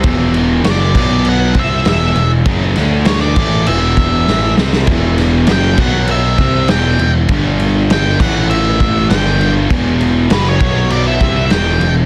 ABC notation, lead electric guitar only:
X:1
M:4/4
L:1/16
Q:1/4=99
K:Em
V:1 name="Lead electric guitar"
z4 d4 f2 e2 e3 z | z4 ^c d3 e6 z2 | z4 g2 f2 e4 g3 z | z4 g2 f2 e4 g3 z |
z4 B ^c3 d e3 g3 z |]